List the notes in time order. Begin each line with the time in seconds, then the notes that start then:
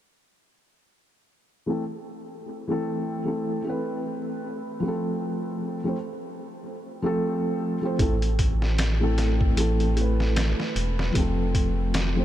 1.66 E3 A3 C4 A4
2.67 E3 A3 C4 A4
3.24 E3 A3 C4 A4
3.62 E3 A3
3.67 C4 B4
4.80 F3 A3
4.85 C4 A4
5.84 F3 A3 C4 C5
7.02 F3 A3 C4 A4
7.81 F3 A3 C4 C5
7.98 A1 E3 A3 C4 A4, kick, closed hi-hat
8.22 closed hi-hat
8.39 kick, closed hi-hat
8.62 snare
8.78 snare, closed hi-hat
9.00 E3 A3 C4 A4
9.18 snare, closed hi-hat
9.41 kick
9.56 E3 A3 C4, closed hi-hat
9.60 A4
9.80 closed hi-hat
9.93 E3 A3, closed hi-hat
9.99 C4 B4
10.20 snare
10.36 snare, closed hi-hat
10.60 snare
10.76 E1, closed hi-hat
10.99 snare
11.12 F1 F3 A3, kick, closed hi-hat
11.17 C4 A4
11.55 kick, closed hi-hat
11.94 snare, closed hi-hat
12.15 F3 A3 C4 C5